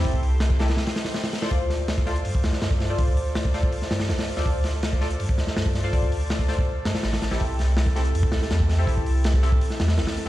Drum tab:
HH |o-o-o-oooooooooo|o-o-o-oxo-o-o-o-|o-o-o-o-o-ooooo-|o-o-o-oxo-o-o-o-|
SD |----o-oooooooooo|--o-o-o---ooo-o-|----o-o--ooooo-o|--o-o-o---ooo-o-|
BD |oo---o----------|o----o---o---o--|oo---o-o--------|o----o---o---o--|

HH |o-o-o-o---oooooo|o-o-o-oxo-o-o-o-|o-o-o-o-o-ooooo-|
SD |----o-o---oooooo|--o-o-o---ooo-o-|----o-o--ooooo-o|
BD |oo---o-o--------|o----o---o---o--|oo---o-o--------|